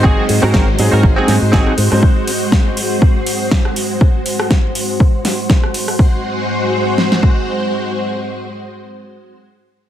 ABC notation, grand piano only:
X:1
M:4/4
L:1/16
Q:"Swing 16ths" 1/4=121
K:Abmix
V:1 name="Grand piano"
[G,CEA]3 [G,CEA] z2 [G,CEA]3 [G,CEA] z2 [G,CEA] z2 [G,CEc] | z16 | z16 | z16 |
z16 |]